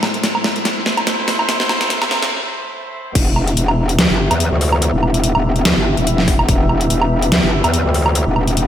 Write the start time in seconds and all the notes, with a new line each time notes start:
Already playing: A2 A3 E4 C5
0.03 snare, low woodblock
0.14 closed hi-hat
0.24 snare, closed hi-hat
0.35 low woodblock
0.44 snare
0.56 closed hi-hat
0.65 snare, closed hi-hat
0.86 snare
0.97 closed hi-hat, low woodblock
1.07 snare, closed hi-hat
1.28 snare, open hi-hat
1.39 low woodblock
1.49 snare, closed hi-hat
1.60 snare
1.69 snare, low woodblock
1.81 snare, closed hi-hat
1.90 snare, closed hi-hat
2.02 snare, low woodblock
2.11 snare
2.23 snare, closed hi-hat
3.15 E1 E3 B3 G4 E5, kick, closed hi-hat, crash
3.36 low woodblock
3.48 closed hi-hat
3.57 E1, closed hi-hat
3.68 low woodblock
3.89 closed hi-hat
3.99 D2, snare, closed hi-hat
4.10 G1
4.31 E2, closed hi-hat, low woodblock
4.40 closed hi-hat
4.52 D2
4.61 open hi-hat
4.72 low woodblock
4.82 closed hi-hat
4.93 E1
5.03 low woodblock
5.14 closed hi-hat
5.24 closed hi-hat
5.35 E1, low woodblock
5.56 closed hi-hat
5.65 D2, snare, closed hi-hat
5.77 G1
5.97 E1, closed hi-hat
6.07 closed hi-hat
6.18 snare
6.28 kick, open hi-hat
6.39 low woodblock
6.49 E1, kick, closed hi-hat
6.69 low woodblock
6.81 closed hi-hat
6.90 E1, closed hi-hat
7.02 low woodblock
7.22 closed hi-hat
7.32 D2, snare, closed hi-hat
7.43 G1
7.64 E2, closed hi-hat, low woodblock
7.74 closed hi-hat
7.85 D2
7.94 open hi-hat
8.06 low woodblock
8.15 closed hi-hat
8.27 E1
8.36 low woodblock
8.47 closed hi-hat
8.57 closed hi-hat